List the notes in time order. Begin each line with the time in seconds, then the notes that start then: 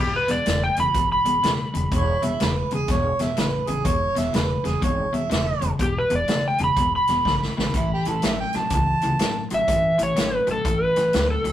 Already playing: E1 E2
0.00 B2 G4
0.16 B4
0.28 E1 E2 B2 D5, closed hi-hat
0.46 E1 E2 C#3, snare, closed hi-hat
0.64 G5
0.76 E1 E2 C#3 B5, closed hi-hat
0.94 G#1 E2 B2, kick, closed hi-hat
1.12 B5
1.25 G#1 E2 B2, closed hi-hat
1.43 E1 E2 C#3, snare, closed hi-hat
1.74 E1 E2 C#3, closed hi-hat
1.92 E1 E2 B2 C#5, kick, closed hi-hat
2.22 E1 E2 B2 E5, closed hi-hat
2.40 E1 E2 C#3 B4, snare, closed hi-hat
2.71 E1 E2 C#3 G#4, closed hi-hat
2.88 E1 E2 B2 C#5, kick, snare, closed hi-hat
3.19 E1 E2 B2 E5, snare, closed hi-hat
3.37 A1 E2 C#3 B4, snare, closed hi-hat
3.67 A1 E2 C#3 G#4, closed hi-hat
3.85 E1 E2 B2 C#5, kick, closed hi-hat
4.15 E1 E2 B2 E5, snare, closed hi-hat
4.33 E1 E2 C#3 B4, snare, closed hi-hat
4.64 E1 E2 C#3 G#4, snare, closed hi-hat
4.82 G#1 E2 B2 C#5, kick, closed hi-hat
5.13 G#1 E2 B2 E5, closed hi-hat
5.30 E1 E2 C#3 E5, snare, closed hi-hat
5.61 E1 E2 C#3, closed hi-hat
5.79 E1 E2 B2 G4, kick, closed hi-hat
5.98 B4
6.10 E1 E2 B2, closed hi-hat
6.15 D5
6.28 E1 E2 C#3, snare, closed hi-hat
6.48 G5
6.58 E1 E2 C#3, closed hi-hat
6.64 B5
6.77 E1 E2 B2, kick, closed hi-hat
6.96 B5
7.07 E1 E2 B2, snare, closed hi-hat
7.25 A1 E2 C#3, kick, snare
7.43 snare
7.57 A1 E2 C#3, snare
7.74 A1 A2 E3 E4, kick, closed hi-hat
7.93 G4
8.05 A1 A2 E3 A4, closed hi-hat
8.22 A1 A2 F#3 E5, snare, closed hi-hat
8.40 G5
8.53 A1 A2 F#3 A5, snare, closed hi-hat
8.70 C#2 A2 A5, kick, closed hi-hat
8.74 E3
9.01 C#2 A2 E3, closed hi-hat
9.19 A1 A2 F#3, snare, closed hi-hat
9.50 A1 A2 F#3, closed hi-hat
9.54 E5
9.68 A1 A2 E3, kick, closed hi-hat
9.98 A1 A2 E3, closed hi-hat
10.03 C#5
10.16 A1 A2 F#3, snare, closed hi-hat
10.35 B4
10.47 A1 A2 F#3, closed hi-hat
10.52 A4
10.65 A1 A2 E3, kick, closed hi-hat
10.83 B4
10.96 A1 A2 E3, snare, closed hi-hat
11.13 D2 A2 F#3, snare, closed hi-hat
11.31 A4
11.44 D2 A2 F#3, closed hi-hat